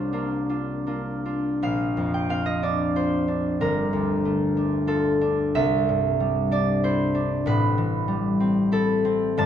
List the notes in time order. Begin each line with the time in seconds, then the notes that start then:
Already playing: C2 A#3 D4 F4 C5
0.13 A#3 D4 F4
0.49 D4 F4
0.86 A#3 D4 F4
1.25 D4 F4
1.62 A#1 F5
1.97 F2
2.14 G5
2.29 C4 F5
2.46 D#5
2.62 D4 D5
2.96 F4 C5
3.28 D4
3.61 G1 A#4
3.93 D2
4.25 A3
4.57 D4
4.87 F4 A4
5.21 D4
5.55 C2 E5
5.89 G2
6.20 G3
6.51 D4 D5
6.84 E4 C5
7.15 D4
7.46 A1 A2 B4
7.78 E3
8.08 G3
8.40 C4
8.72 E4 A4
9.05 C4
9.37 G1 G2 A5